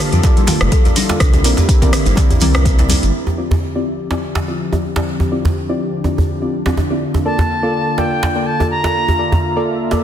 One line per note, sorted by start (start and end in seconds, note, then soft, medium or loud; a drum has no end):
0.00 3.10 D3 medium
0.00 0.21 A#3 loud
0.00 1.19 A#3 medium
0.00 0.21 F4 medium
0.00 1.17 F4 medium
0.00 0.21 A4 medium
0.00 1.19 A4 medium
0.00 0.21 D5 loud
0.00 shekere medium
0.12 0.20 F2 loud
0.12 0.23 F4 medium
0.12 closed hi-hat soft
0.12 high conga medium
0.12 shekere soft
0.23 0.58 A#3 medium
0.23 0.58 F4 medium
0.23 0.58 A4 medium
0.23 0.58 D5 loud
0.23 kick loud
0.23 closed hi-hat medium
0.23 muted conga medium
0.23 djembe slap medium
0.23 shekere medium
0.37 closed hi-hat soft
0.37 high conga loud
0.37 shekere soft
0.47 0.60 F4 medium
0.47 open hi-hat medium
0.47 mid tom medium
0.47 djembe slap medium
0.47 high conga medium
0.47 shekere medium
0.61 0.69 F1 loud
0.61 0.72 A#3 medium
0.61 0.72 F4 medium
0.61 0.72 A4 medium
0.61 0.72 D5 medium
0.61 cross-stick medium
0.61 muted conga soft
0.61 high conga medium
0.61 low conga medium
0.61 shekere soft
0.72 0.84 A4 loud
0.72 kick loud
0.72 closed hi-hat medium
0.72 shekere medium
0.85 0.96 A#3 medium
0.85 0.96 F4 medium
0.85 0.96 A4 medium
0.85 0.96 D5 medium
0.85 closed hi-hat soft
0.85 djembe tone medium
0.85 shekere soft
0.96 1.08 D4 medium
0.96 open hi-hat medium
0.96 muted conga medium
0.96 high conga loud
0.96 shekere medium
1.09 1.19 A#3 medium
1.09 1.19 F4 medium
1.09 1.19 A4 medium
1.09 1.19 D5 medium
1.09 closed hi-hat soft
1.09 djembe slap loud
1.09 shekere soft
1.20 1.46 C2 loud
1.20 3.13 A#3 medium
1.20 3.13 C4 medium
1.20 1.32 D4 medium
1.20 3.13 E4 medium
1.20 kick loud
1.20 cross-stick medium
1.20 closed hi-hat medium
1.20 shekere medium
1.33 closed hi-hat soft
1.33 djembe tone medium
1.33 shekere soft
1.44 1.54 A#1 medium
1.44 1.58 C4 medium
1.44 1.58 E4 medium
1.44 1.57 A#4 medium
1.44 1.58 D5 loud
1.44 open hi-hat medium
1.44 muted conga soft
1.44 high conga medium
1.44 shekere medium
1.57 1.68 G4 medium
1.57 closed hi-hat soft
1.57 djembe slap medium
1.57 djembe bass loud
1.57 shekere soft
1.69 kick loud
1.69 closed hi-hat medium
1.69 shekere soft
1.82 2.15 C4 loud
1.82 2.15 E4 medium
1.82 2.15 A#4 medium
1.82 2.15 D5 loud
1.82 1.93 D5 medium
1.82 kick medium
1.82 closed hi-hat soft
1.82 muted conga soft
1.82 low conga loud
1.82 shekere soft
1.93 cross-stick medium
1.93 open hi-hat medium
1.93 mid tom medium
1.93 shekere medium
2.06 2.14 G1 loud
2.06 2.16 E4 medium
2.06 closed hi-hat soft
2.06 high conga medium
2.06 shekere soft
2.16 2.39 C4 medium
2.16 2.39 E4 medium
2.16 2.39 A#4 medium
2.16 2.39 D5 medium
2.16 kick loud
2.16 closed hi-hat medium
2.16 mid tom medium
2.16 djembe slap medium
2.16 muted conga medium
2.16 djembe tone medium
2.16 shekere soft
2.30 closed hi-hat soft
2.30 djembe bass loud
2.30 shekere soft
2.41 2.96 C2 medium
2.41 2.52 C4 loud
2.41 2.53 C4 medium
2.41 2.52 E4 medium
2.41 2.51 A#4 medium
2.41 2.51 D5 loud
2.41 open hi-hat medium
2.41 mid tom loud
2.41 high conga medium
2.41 shekere medium
2.54 2.73 C4 medium
2.54 2.73 E4 medium
2.54 2.73 A#4 medium
2.54 2.73 D5 medium
2.54 cross-stick medium
2.54 closed hi-hat soft
2.54 muted conga soft
2.54 djembe tone medium
2.54 shekere soft
2.65 2.73 E4 medium
2.65 kick loud
2.65 closed hi-hat medium
2.65 low conga medium
2.65 shekere medium
2.78 2.97 C4 medium
2.78 2.85 E4 medium
2.78 2.97 E4 medium
2.78 2.97 A#4 medium
2.78 2.97 D5 loud
2.78 closed hi-hat soft
2.78 djembe slap medium
2.78 djembe tone medium
2.78 high conga medium
2.78 shekere soft
2.89 3.02 C4 medium
2.89 open hi-hat medium
2.89 muted conga medium
2.89 high conga medium
2.89 djembe tone medium
2.89 shekere medium
3.03 3.11 G1 medium
3.03 closed hi-hat soft
3.03 shekere soft
3.14 10.04 D3 medium
3.14 6.97 F3 medium
3.14 6.97 C4 medium
3.14 6.97 G4 medium
3.14 5.06 E5 medium
3.27 djembe tone medium
3.38 3.51 C4 medium
3.38 3.51 E4 medium
3.38 3.51 F4 medium
3.38 3.51 G4 medium
3.38 3.51 D5 medium
3.51 djembe slap medium
3.51 djembe bass medium
3.75 4.08 C4 medium
3.75 4.08 E4 medium
3.75 4.08 F4 medium
3.75 4.08 G4 medium
3.75 4.08 D5 loud
4.11 4.45 C4 medium
4.11 4.45 E4 medium
4.11 4.45 F4 medium
4.11 4.45 G4 medium
4.11 4.45 D5 medium
4.11 djembe slap medium
4.35 djembe slap medium
4.48 4.59 C4 medium
4.48 4.59 E4 medium
4.48 4.59 F4 medium
4.48 4.59 G4 medium
4.48 4.59 D5 medium
4.72 4.83 C4 medium
4.72 4.83 E4 medium
4.72 4.83 F4 medium
4.72 4.83 G4 medium
4.72 4.83 D5 medium
4.72 djembe tone medium
4.96 5.07 C4 medium
4.96 5.07 E4 medium
4.96 5.07 F4 medium
4.96 5.07 G4 medium
4.96 5.07 D5 medium
4.96 djembe slap loud
5.07 8.91 D4 medium
5.20 djembe tone medium
5.32 5.45 C4 medium
5.32 5.45 E4 medium
5.32 5.45 F4 medium
5.32 5.45 G4 medium
5.32 5.45 D5 medium
5.45 djembe slap medium
5.45 djembe bass medium
5.69 6.02 C4 medium
5.69 6.02 E4 medium
5.69 6.02 F4 medium
5.69 6.02 G4 medium
5.69 6.02 D5 loud
6.04 6.39 C4 medium
6.04 6.39 E4 medium
6.04 6.39 F4 medium
6.04 6.39 G4 medium
6.04 6.39 D5 medium
6.04 djembe tone medium
6.18 djembe bass medium
6.42 6.53 C4 medium
6.42 6.53 E4 medium
6.42 6.53 F4 medium
6.42 6.53 G4 medium
6.42 6.53 D5 medium
6.66 6.77 C4 medium
6.66 6.77 E4 medium
6.66 6.77 F4 medium
6.66 6.77 G4 medium
6.66 6.77 D5 medium
6.66 djembe slap medium
6.66 djembe tone medium
6.77 djembe tone medium
6.90 7.00 C4 medium
6.90 7.00 E4 medium
6.90 7.00 F4 medium
6.90 7.00 G4 medium
6.90 7.00 D5 medium
7.01 10.04 A#3 medium
7.01 10.04 F4 medium
7.14 djembe tone medium
7.25 7.38 A#3 medium
7.25 7.38 F4 medium
7.25 7.38 A4 medium
7.25 7.38 D5 loud
7.25 8.00 A5 medium
7.39 djembe slap medium
7.39 djembe bass medium
7.63 7.95 A#3 medium
7.63 7.95 F4 medium
7.63 7.95 A4 medium
7.63 7.95 D5 loud
7.98 8.32 A#3 medium
7.98 8.32 F4 medium
7.98 8.32 A4 medium
7.98 8.32 D5 medium
7.98 8.48 G5 medium
7.98 djembe slap medium
8.23 djembe slap loud
8.35 8.46 A#3 medium
8.35 8.46 F4 medium
8.35 8.46 A4 medium
8.35 8.46 D5 medium
8.46 8.70 A5 loud
8.60 8.70 A#3 medium
8.60 8.70 F4 medium
8.60 8.70 A4 medium
8.60 8.70 D5 medium
8.60 djembe tone medium
8.71 9.39 A#5 loud
8.84 8.94 A#3 medium
8.84 8.94 F4 medium
8.84 8.94 A4 medium
8.84 8.94 D5 medium
8.84 djembe slap loud
8.95 10.04 E5 medium
9.08 djembe tone medium
9.19 9.32 A#3 medium
9.19 9.32 F4 medium
9.19 9.32 A4 medium
9.19 9.32 D5 loud
9.32 djembe slap medium
9.32 djembe bass medium
9.56 9.89 A#3 medium
9.56 9.89 F4 medium
9.56 9.89 A4 medium
9.56 9.89 D5 loud
9.91 10.04 A#3 medium
9.91 10.04 F4 medium
9.91 10.04 A4 medium
9.91 10.04 D5 medium
9.91 djembe slap medium
9.91 djembe tone medium